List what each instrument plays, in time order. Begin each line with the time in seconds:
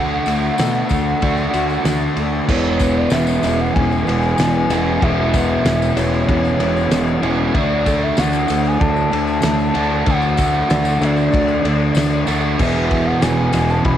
Already playing: fingered electric bass D2, overdriven electric guitar D3 A3 D4 F#4, distorted electric guitar D3, clean electric guitar A3 D4 F#4, soft synth lead F#5
0.00 distorted electric guitar A3 D4
0.26 fingered electric bass D2, clean electric guitar A3, ride, tambourine
0.42 tambourine
0.58 fingered electric bass B2, clean electric guitar A3, snare, ride, tambourine
0.75 tambourine
0.89 fingered electric bass D2, clean electric guitar A3, kick, ride, tambourine
1.21 fingered electric bass D2, overdriven electric guitar D3 A3 D4 F#4, distorted electric guitar D3 A3 D4, clean electric guitar D4, kick, ride
1.37 tambourine
1.53 fingered electric bass D2, clean electric guitar F#4, ride, tambourine
1.69 tambourine
1.84 fingered electric bass D2, clean electric guitar D4, snare, ride, tambourine
2.01 tambourine
2.17 fingered electric bass D2, clean electric guitar A3, ride, tambourine
2.47 fingered electric bass E1, overdriven electric guitar E2 B2 E3 G#3 B3 E4, distorted electric guitar E2, clean electric guitar E3, soft synth lead C#5, kick, crash
2.52 distorted electric guitar B2 E3
2.79 clean electric guitar B3, kick, ride, tambourine
2.98 soft synth lead D5
3.10 fingered electric bass E1, clean electric guitar C#4, soft synth lead E5, snare, ride, tambourine
3.27 tambourine
3.43 fingered electric bass E1, clean electric guitar E3, ride, tambourine
3.59 soft synth lead F#5, tambourine
3.74 fingered electric bass E1, clean electric guitar C#4, soft synth lead G#5, kick, ride
3.91 tambourine
4.07 fingered electric bass E1, distorted electric guitar E2 B2 E3, clean electric guitar B3, ride, tambourine
4.22 tambourine
4.38 fingered electric bass E1, distorted electric guitar E2 B2, clean electric guitar E3, snare, ride, tambourine
4.42 distorted electric guitar E3
4.54 tambourine
4.70 fingered electric bass E1, overdriven electric guitar E3 G#3 B3 E4, clean electric guitar C#4, ride, tambourine
4.74 overdriven electric guitar E2 B2
5.02 fingered electric bass E1, overdriven electric guitar E2 B2 E3 G#3 B3 E4, distorted electric guitar E2 B2, clean electric guitar E3, soft synth lead E5, kick, ride
5.06 distorted electric guitar E3
5.34 clean electric guitar B3, kick, ride, tambourine
5.50 soft synth lead E5
5.65 fingered electric bass E1, clean electric guitar C#4, snare, ride, tambourine
5.82 tambourine
5.96 fingered electric bass E1, clean electric guitar E3, soft synth lead C#5, ride, tambourine
6.13 tambourine
6.28 fingered electric bass E1, clean electric guitar C#4, kick, ride
6.45 tambourine
6.60 fingered electric bass E1, distorted electric guitar E2 B2 E3, clean electric guitar B3, ride, tambourine
6.77 tambourine
6.90 fingered electric bass E1, distorted electric guitar E2 B2 E3, clean electric guitar E3, snare, ride, tambourine
7.08 tambourine
7.22 fingered electric bass E1, overdriven electric guitar E2 B2 E3 G#3 B3 E4, clean electric guitar C#4, ride
7.53 fingered electric bass D2, overdriven electric guitar D3 A3 D4 F#4, distorted electric guitar D3 A3 D4, clean electric guitar A3, soft synth lead D5, kick, ride
7.86 clean electric guitar A3, kick, ride, tambourine
8.03 soft synth lead E5
8.17 fingered electric bass D2, clean electric guitar D4, soft synth lead F#5, snare, ride, tambourine
8.33 tambourine
8.48 fingered electric bass D2, clean electric guitar A3, ride, tambourine
8.64 soft synth lead G#5, tambourine
8.80 fingered electric bass D2, clean electric guitar D4, soft synth lead A5, kick, ride
8.96 tambourine
9.11 fingered electric bass D2, distorted electric guitar D3 A3 D4, clean electric guitar A3, ride, tambourine
9.27 tambourine
9.42 fingered electric bass D2, distorted electric guitar D3 A3 D4, clean electric guitar A3, snare, ride, tambourine
9.59 tambourine
9.74 fingered electric bass D2, overdriven electric guitar D3 A3 D4 F#4, clean electric guitar D4, ride
10.06 fingered electric bass D2, overdriven electric guitar D3 A3 D4 F#4, distorted electric guitar D3 A3, clean electric guitar A3, kick, ride, tambourine
10.10 distorted electric guitar D4, soft synth lead F#5
10.22 tambourine
10.37 clean electric guitar A3, kick, ride, tambourine
10.54 soft synth lead F#5, tambourine
10.70 fingered electric bass D2, clean electric guitar D4, snare, ride, tambourine
10.85 tambourine
11.01 fingered electric bass D2, clean electric guitar A3, soft synth lead D5, ride, tambourine
11.17 tambourine
11.32 fingered electric bass D2, clean electric guitar D4, kick, ride, tambourine
11.48 tambourine
11.64 fingered electric bass D2, clean electric guitar A3, distorted electric guitar A3 D4, ride
11.68 distorted electric guitar D3
11.95 fingered electric bass D2, distorted electric guitar D3, clean electric guitar A3, snare, ride, tambourine
11.99 distorted electric guitar A3 D4
12.27 fingered electric bass D2, overdriven electric guitar A3 D4 F#4, clean electric guitar D4, ride, tambourine
12.31 overdriven electric guitar D3
12.58 fingered electric bass E1, overdriven electric guitar E2 B2 E3 G#3 B3 G#4, distorted electric guitar E2 B2, clean electric guitar E3, soft synth lead E5, kick, crash
12.63 distorted electric guitar E3
12.90 clean electric guitar B3, kick, ride
13.07 soft synth lead F#5
13.22 fingered electric bass E1, clean electric guitar C#4, soft synth lead G#5, snare, ride, tambourine
13.53 fingered electric bass E1, clean electric guitar E3, ride, tambourine
13.69 soft synth lead A5, tambourine
13.84 fingered electric bass E1, clean electric guitar C#4, soft synth lead B5, kick, ride